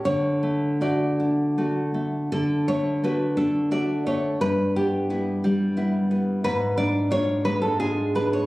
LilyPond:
\new Staff \with { instrumentName = "Nylon-string guitar" } { \time 3/4 \key d \major \tempo 4 = 87 << { cis''4 d''4. r8 | a'8 cis''8 b'8 a'8 d''8 cis''8 | b'8 g'2~ g'8 | b'8 d''8 cis''8 b'16 a'16 gis'8 b'16 cis''16 | } \\ { d8 a8 <a fis'>8 d'8 <a fis'>8 a8 | d8 a8 <a fis'>8 d'8 <a fis'>8 a8 | g,8 b8 <b e'>8 g8 <b e'>8 b8 | gis,8 d'8 <d' eis'>8 gis8 <d' eis'>8 d'8 | } >> }